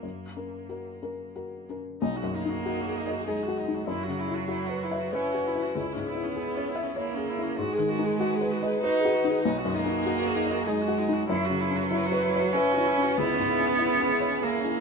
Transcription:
0.00 1.97 F#2 soft
0.00 1.76 A#3 medium
0.36 0.66 C#4 soft
0.36 0.66 A#4 soft
0.69 0.99 F#4 soft
0.69 0.99 A#4 soft
1.02 1.32 C#4 soft
1.02 1.32 A#4 soft
1.36 1.65 F#4 soft
1.36 1.65 A#4 soft
1.69 1.98 C#4 soft
1.69 1.99 A#4 soft
2.01 3.84 B1 medium
2.01 2.18 D#4 medium
2.01 3.85 D#4 medium
2.01 3.86 G#4 medium
2.16 2.36 F#4 medium
2.23 2.57 F#2 medium
2.34 3.28 A#3 loud
2.34 2.50 D#4 medium
2.45 2.78 D#4 medium
2.45 2.64 F#4 soft
2.65 2.82 D#4 soft
2.65 2.98 F#4 medium
2.81 2.98 F#4 medium
2.86 3.19 G#4 medium
2.96 3.12 D#4 medium
3.07 3.39 D#5 medium
3.11 3.26 F#4 medium
3.27 3.87 G#3 medium
3.27 3.44 D#4 medium
3.27 3.60 G#4 medium
3.43 3.59 F#4 medium
3.48 3.80 F#4 medium
3.58 3.76 D#4 soft
3.68 3.88 D#4 soft
3.74 3.87 F#4 medium
3.87 5.72 F#2 medium
3.87 5.15 F#3 loud
3.87 4.05 E4 medium
3.87 7.59 E4 medium
3.87 5.77 F#4 medium
4.03 4.21 F#4 medium
4.08 4.41 C#3 medium
4.19 4.35 E4 medium
4.28 4.62 E4 medium
4.34 4.49 F#4 medium
4.48 4.67 E4 medium
4.48 4.83 F#4 medium
4.66 4.84 F#4 medium
4.66 5.05 B4 medium
4.83 5.00 E4 medium
4.91 5.27 E5 medium
4.98 5.14 F#4 medium
5.13 5.76 C#4 medium
5.13 5.33 E4 medium
5.13 5.47 B4 medium
5.32 5.48 F#4 medium
5.32 5.68 F#4 medium
5.47 5.63 E4 medium
5.55 5.76 E4 soft
5.62 5.77 F#4 medium
5.75 7.54 C#2 medium
5.75 5.94 E4 medium
5.75 7.59 G#4 medium
5.75 7.59 C#5 medium
5.92 6.29 G#2 medium
5.92 6.10 C#4 medium
6.05 6.93 B3 medium
6.05 6.25 E4 medium
6.15 6.49 E4 medium
6.24 6.38 C#4 medium
6.36 6.55 E4 medium
6.36 6.69 G#4 soft
6.54 6.70 C#4 medium
6.54 6.89 C#5 medium
6.68 6.84 E4 medium
6.76 7.09 E5 medium
6.83 6.98 C#4 medium
6.96 7.59 A#3 medium
6.96 7.15 E4 medium
6.96 7.29 C#5 medium
7.14 7.30 C#4 medium
7.14 7.50 G#4 medium
7.28 7.44 E4 medium
7.39 7.59 E4 medium
7.43 7.58 C#4 medium
7.57 9.40 G#2 medium
7.57 8.82 G#3 loud
7.57 11.28 D#4 medium
7.57 11.28 F#4 medium
7.57 7.75 F#4 medium
7.57 9.44 B4 medium
7.73 7.90 G#4 medium
7.79 8.11 D#3 medium
7.89 8.06 F#4 medium
7.99 8.32 D#4 medium
8.04 8.18 G#4 medium
8.19 8.37 F#4 medium
8.19 8.54 F#4 medium
8.35 8.53 G#4 medium
8.41 8.75 B4 medium
8.51 8.68 F#4 medium
8.62 8.83 G#4 medium
8.62 8.96 D#5 medium
8.83 9.42 D#4 loud
8.83 9.01 F#4 medium
8.83 9.16 B4 medium
8.99 9.15 G#4 medium
9.05 9.36 F#4 medium
9.13 9.30 F#4 medium
9.24 9.44 D#4 medium
9.24 9.43 G#4 medium
9.43 11.25 B1 medium
9.43 9.59 D#4 medium
9.43 11.29 G#4 medium
9.58 9.75 F#4 medium
9.65 9.97 F#2 medium
9.74 10.68 A#3 loud
9.74 9.91 D#4 medium
9.86 10.18 D#4 medium
9.86 10.03 F#4 medium
10.04 10.21 D#4 medium
10.04 10.39 F#4 medium
10.19 10.37 F#4 medium
10.27 10.59 G#4 medium
10.35 10.53 D#4 medium
10.47 10.80 D#5 medium
10.51 10.66 F#4 medium
10.66 11.28 G#3 loud
10.66 10.83 D#4 medium
10.66 11.00 G#4 medium
10.82 11.00 F#4 medium
10.88 11.21 F#4 medium
10.98 11.15 D#4 medium
11.09 11.29 D#4 medium
11.13 11.28 F#4 medium
11.28 13.13 F#2 medium
11.28 12.55 F#3 loud
11.28 14.80 C#4 medium
11.28 11.47 E4 medium
11.28 14.80 E4 medium
11.28 13.17 B4 medium
11.45 11.61 F#4 medium
11.50 11.82 C#3 medium
11.60 11.77 E4 medium
11.71 12.03 C#4 medium
11.75 11.89 F#4 medium
11.90 12.08 E4 medium
11.90 12.25 E4 medium
12.06 12.24 F#4 medium
12.12 12.46 B4 medium
12.22 12.41 E4 medium
12.35 12.68 C#5 medium
12.39 12.54 F#4 medium
12.53 13.18 C#4 loud
12.53 12.73 E4 medium
12.53 12.88 B4 medium
12.71 12.88 F#4 medium
12.78 13.10 E4 medium
12.87 13.04 E4 medium
12.98 13.18 C#4 medium
13.02 13.17 F#4 medium
13.16 14.80 C#2 medium
13.16 14.45 B3 loud
13.16 13.36 E4 medium
13.16 14.80 G#4 medium
13.34 13.50 C#4 medium
13.39 13.71 G#2 medium
13.48 13.66 E4 medium
13.59 13.92 C#4 medium
13.64 13.79 C#4 medium
13.79 14.12 E4 medium
13.79 13.97 E4 medium
13.96 14.14 C#4 medium
14.00 14.34 G#4 medium
14.12 14.30 E4 medium
14.20 14.55 C#5 medium
14.29 14.44 C#4 medium
14.42 14.80 A#3 loud
14.42 14.62 E4 medium
14.42 14.77 G#4 medium
14.60 14.79 C#4 medium
14.64 14.80 E4 medium
14.77 14.80 E4 medium

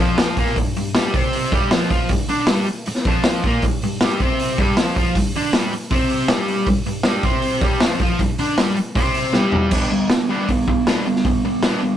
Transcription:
0.00 0.37 F2 medium
0.00 0.37 F3 medium
0.18 snare loud
0.18 open hi-hat medium
0.37 0.56 A#2 medium
0.37 0.57 A#3 loud
0.37 kick loud
0.37 open hi-hat medium
0.46 snare soft
0.56 0.72 G2 medium
0.56 kick medium
0.56 open hi-hat medium
0.76 0.91 G2 medium
0.76 open hi-hat medium
0.95 1.14 G2 medium
0.95 1.14 G3 loud
0.95 snare loud
0.95 open hi-hat medium
1.14 1.52 C3 medium
1.14 1.52 C4 loud
1.14 kick loud
1.14 open hi-hat medium
1.33 open hi-hat medium
1.52 1.71 G2 medium
1.52 1.72 G3 loud
1.52 kick loud
1.52 open hi-hat medium
1.71 1.90 F2 medium
1.71 1.89 F3 loud
1.71 snare loud
1.71 open hi-hat medium
1.90 2.09 F3 medium
1.90 2.10 F4 loud
1.90 kick loud
1.90 open hi-hat medium
2.09 2.25 G2 medium
2.09 kick medium
2.09 open hi-hat medium
2.28 2.48 D3 medium
2.28 2.48 D4 loud
2.28 open hi-hat medium
2.47 2.66 G2 medium
2.47 2.67 G3 medium
2.47 snare loud
2.47 open hi-hat medium
2.66 muted overdriven electric guitar stroke medium
2.66 open hi-hat medium
2.86 muted overdriven electric guitar stroke medium
2.86 open hi-hat medium
2.95 snare soft
3.05 3.44 F2 medium
3.05 3.44 F3 loud
3.05 kick loud
3.05 open hi-hat medium
3.24 snare loud
3.24 open hi-hat medium
3.44 3.63 A#2 medium
3.44 3.63 A#3 loud
3.44 kick medium
3.44 open hi-hat medium
3.62 3.79 G2 medium
3.62 kick medium
3.62 open hi-hat medium
3.82 3.98 G2 medium
3.82 open hi-hat medium
4.01 4.20 G2 medium
4.01 4.20 G3 medium
4.01 snare loud
4.01 open hi-hat medium
4.20 4.58 C3 medium
4.20 4.58 C4 loud
4.20 kick loud
4.20 open hi-hat medium
4.39 open hi-hat medium
4.58 4.76 G2 medium
4.58 4.77 G3 medium
4.58 kick loud
4.58 open hi-hat medium
4.77 4.96 F2 medium
4.77 4.96 F3 loud
4.77 snare loud
4.77 open hi-hat medium
4.96 5.15 F3 medium
4.96 5.16 F4 loud
4.96 kick loud
4.96 open hi-hat medium
5.15 5.31 G2 medium
5.15 kick medium
5.15 open hi-hat medium
5.34 5.54 D3 medium
5.34 5.54 D4 medium
5.34 open hi-hat medium
5.53 5.72 G2 medium
5.53 5.73 G3 loud
5.53 snare loud
5.53 open hi-hat medium
5.73 muted overdriven electric guitar stroke medium
5.73 open hi-hat medium
5.91 6.29 C3 medium
5.91 6.29 C4 loud
5.91 kick loud
5.91 open hi-hat medium
6.09 open hi-hat medium
6.28 6.66 G2 loud
6.28 6.67 G3 loud
6.28 snare loud
6.28 open hi-hat medium
6.48 open hi-hat medium
6.67 6.83 G2 medium
6.67 kick loud
6.67 open hi-hat medium
6.86 7.02 G2 medium
6.86 open hi-hat medium
7.03 7.24 G2 medium
7.03 7.25 G3 medium
7.03 snare loud
7.03 open hi-hat medium
7.23 7.62 C3 medium
7.23 7.62 C4 medium
7.23 kick loud
7.23 open hi-hat medium
7.42 open hi-hat medium
7.61 7.81 G2 loud
7.61 7.81 G3 loud
7.61 kick loud
7.61 open hi-hat medium
7.80 8.00 F2 medium
7.80 8.00 F3 loud
7.80 snare loud
7.80 open hi-hat medium
8.00 8.20 F3 medium
8.00 8.20 F4 loud
8.00 kick loud
8.00 open hi-hat medium
8.19 8.35 G2 medium
8.19 kick medium
8.19 open hi-hat medium
8.38 8.58 D3 medium
8.38 8.58 D4 loud
8.38 open hi-hat medium
8.58 8.75 G2 medium
8.58 8.77 G3 loud
8.58 snare loud
8.58 open hi-hat medium
8.77 muted overdriven electric guitar stroke medium
8.77 open hi-hat medium
8.95 9.33 C3 medium
8.95 9.34 C4 loud
8.95 kick loud
8.95 open hi-hat medium
9.14 open hi-hat medium
9.33 9.71 G2 medium
9.33 9.70 G3 loud
9.33 snare medium
9.52 floor tom medium
9.71 9.89 G3 medium
9.71 9.89 B3 medium
9.71 9.91 D4 loud
9.71 kick loud
9.71 crash loud
9.90 10.08 G3 medium
9.90 10.08 B3 medium
10.10 10.27 G3 medium
10.10 10.28 B3 medium
10.10 snare loud
10.10 open hi-hat medium
10.29 10.47 G3 medium
10.29 10.48 B3 medium
10.29 10.48 D4 medium
10.48 10.66 G3 medium
10.48 10.66 B3 medium
10.48 kick medium
10.48 open hi-hat medium
10.67 10.85 G3 medium
10.67 10.85 B3 medium
10.67 kick medium
10.87 11.05 G3 medium
10.87 11.05 B3 loud
10.87 11.06 D4 loud
10.87 snare loud
10.87 open hi-hat medium
11.06 11.23 G3 medium
11.06 11.23 B3 medium
11.16 snare soft
11.25 11.42 G3 medium
11.25 11.43 B3 medium
11.25 kick loud
11.25 open hi-hat medium
11.45 11.62 G3 medium
11.45 11.62 B3 medium
11.63 11.81 G3 medium
11.63 11.82 B3 medium
11.63 11.82 D4 medium
11.63 snare loud
11.63 open hi-hat medium
11.82 11.97 G3 medium
11.82 11.97 B3 medium

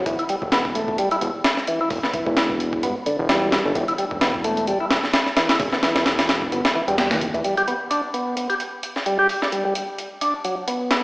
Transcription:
0.06 0.15 E1 loud
0.06 0.17 E3 medium
0.06 kick loud
0.06 closed hi-hat medium
0.19 0.24 E4 medium
0.19 closed hi-hat soft
0.29 0.36 G3 medium
0.29 closed hi-hat medium
0.42 1.05 E1 medium
0.42 kick medium
0.52 0.63 B3 loud
0.52 snare loud
0.52 closed hi-hat medium
0.65 kick medium
0.75 0.97 A3 medium
0.75 closed hi-hat medium
0.88 kick loud
0.98 1.09 G3 medium
0.98 closed hi-hat medium
1.11 1.17 E4 medium
1.11 closed hi-hat soft
1.21 1.30 E1 medium
1.21 closed hi-hat medium
1.44 snare loud
1.44 closed hi-hat medium
1.57 snare soft
1.67 1.79 E3 medium
1.67 closed hi-hat medium
1.81 1.89 E4 loud
1.90 1.99 E1 loud
1.90 kick loud
1.90 open hi-hat medium
2.03 2.09 B3 medium
2.03 snare medium
2.14 2.26 E3 medium
2.14 kick loud
2.14 closed hi-hat medium
2.26 2.85 E1 medium
2.26 2.35 E3 medium
2.26 kick medium
2.37 snare loud
2.37 closed hi-hat medium
2.50 kick medium
2.60 closed hi-hat medium
2.73 kick medium
2.83 2.92 G1 medium
2.83 2.95 B3 medium
2.83 closed hi-hat medium
3.06 3.17 D3 medium
3.06 closed hi-hat medium
3.19 3.59 E1 loud
3.29 3.64 G3 medium
3.29 snare loud
3.29 closed hi-hat medium
3.52 snare loud
3.52 closed hi-hat medium
3.65 3.72 G1 medium
3.65 3.74 D3 medium
3.75 3.84 E1 loud
3.75 3.86 E3 medium
3.75 kick loud
3.75 closed hi-hat medium
3.88 3.93 E4 medium
3.88 closed hi-hat soft
3.98 4.05 G3 medium
3.98 closed hi-hat medium
4.11 4.74 E1 medium
4.11 kick medium
4.21 4.32 B3 loud
4.21 snare loud
4.21 closed hi-hat medium
4.34 kick medium
4.44 4.67 A3 medium
4.44 closed hi-hat medium
4.57 closed hi-hat soft
4.67 4.78 G3 medium
4.67 closed hi-hat medium
4.80 4.86 E4 medium
4.91 5.00 E1 medium
4.91 snare loud
4.91 closed hi-hat medium
5.04 snare soft
5.13 snare loud
5.13 closed hi-hat medium
5.26 snare soft
5.37 5.48 E3 medium
5.37 snare loud
5.37 closed hi-hat medium
5.49 5.58 E4 loud
5.49 snare loud
5.49 closed hi-hat medium
5.60 5.69 E1 loud
5.60 kick loud
5.60 open hi-hat medium
5.73 5.78 B3 medium
5.73 snare medium
5.83 5.95 E3 medium
5.83 snare loud
5.83 closed hi-hat medium
5.95 6.54 E1 medium
5.95 6.04 E3 loud
5.95 snare loud
5.95 closed hi-hat medium
6.06 snare loud
6.06 closed hi-hat medium
6.19 snare loud
6.19 closed hi-hat medium
6.29 snare loud
6.29 closed hi-hat medium
6.42 kick medium
6.52 6.61 G1 medium
6.52 6.64 B3 medium
6.52 closed hi-hat medium
6.65 snare loud
6.65 closed hi-hat medium
6.75 6.82 E3 medium
6.88 7.13 E1 loud
6.88 6.97 G3 loud
6.88 closed hi-hat medium
6.98 7.11 G3 medium
6.98 snare loud
6.98 closed hi-hat medium
7.11 7.23 E2 medium
7.11 snare loud
7.11 closed hi-hat medium
7.21 7.30 D1 loud
7.21 closed hi-hat medium
7.34 7.41 E1 loud
7.34 7.44 E3 loud
7.34 closed hi-hat soft
7.44 7.55 G3 medium
7.44 closed hi-hat medium
7.57 7.63 G4 medium
7.57 closed hi-hat soft
7.68 7.74 B3 medium
7.68 closed hi-hat medium
7.91 8.01 D4 medium
7.91 closed hi-hat medium
8.14 8.36 B3 medium
8.14 closed hi-hat medium
8.37 8.48 B3 medium
8.37 closed hi-hat medium
8.50 8.55 G4 medium
8.50 closed hi-hat soft
8.60 closed hi-hat medium
8.83 closed hi-hat medium
8.96 snare soft
9.06 9.18 G3 medium
9.06 closed hi-hat medium
9.19 9.27 G4 medium
9.29 open hi-hat medium
9.42 9.47 D4 medium
9.42 snare soft
9.52 9.64 G3 medium
9.52 closed hi-hat medium
9.65 9.74 G3 medium
9.75 closed hi-hat medium
9.98 closed hi-hat medium
10.21 10.34 D4 medium
10.21 closed hi-hat medium
10.45 10.55 F#3 medium
10.45 closed hi-hat medium
10.68 11.02 B3 medium
10.68 closed hi-hat medium
10.91 snare loud
10.91 closed hi-hat medium

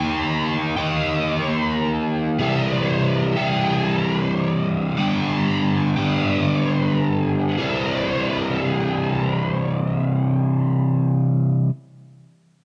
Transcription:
0.00 0.74 D#3 medium
0.00 0.75 A#3 medium
0.00 0.75 D#4 medium
0.00 0.76 G4 loud
0.76 2.38 D#3 medium
0.76 2.38 A#3 medium
0.76 2.37 D#4 medium
0.76 2.42 G4 medium
2.39 3.34 C3 medium
2.39 3.35 E3 medium
2.39 3.37 G3 medium
2.39 3.36 E4 medium
2.39 3.36 G4 medium
3.37 4.98 C3 medium
3.37 4.98 E3 medium
3.37 4.99 G3 medium
3.37 4.97 E4 medium
3.37 5.00 G4 medium
4.97 5.94 G2 medium
4.97 5.94 D3 medium
4.97 5.95 G3 medium
4.97 5.95 B3 medium
4.97 5.95 D4 medium
4.97 5.95 G4 medium
5.96 7.58 G2 medium
5.96 7.57 D3 medium
5.96 7.58 G3 medium
5.96 7.58 B3 medium
5.96 7.58 D4 medium
5.96 7.57 G4 medium
7.58 11.69 C3 medium
7.58 11.69 E3 medium
7.58 11.70 G3 medium
7.58 11.70 C4 medium
7.58 11.70 E4 medium

